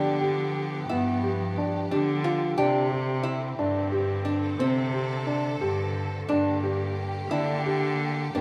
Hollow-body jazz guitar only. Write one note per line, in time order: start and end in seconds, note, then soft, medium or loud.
0.00 0.92 G4 loud
0.89 1.91 E4 loud
1.91 2.24 D4 loud
2.24 2.56 F4 loud
2.58 3.21 G4 loud
3.23 4.21 E4 loud
4.25 4.60 D4 medium
4.60 6.34 C4 loud
6.29 7.30 D4 loud
7.31 8.30 E4 loud
8.35 8.41 D4 loud